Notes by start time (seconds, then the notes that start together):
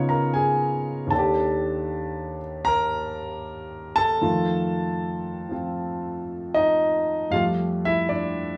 Already playing: C#3 B3 D#4 F4 C#5 C#6
0.09 A#4 A#5
0.34 G#4 G#5
1.07 D#2 D#3 A5
1.13 D4 A4
1.18 G4
2.65 A#4 A#5
3.96 A4 A5
4.21 F2 D#3 A3 F4
5.49 F3 C4 F4
6.54 D#4 D#5
7.30 F2 G3 A3 F4 F5
7.36 G4
7.85 E4 E5
8.09 D4 D5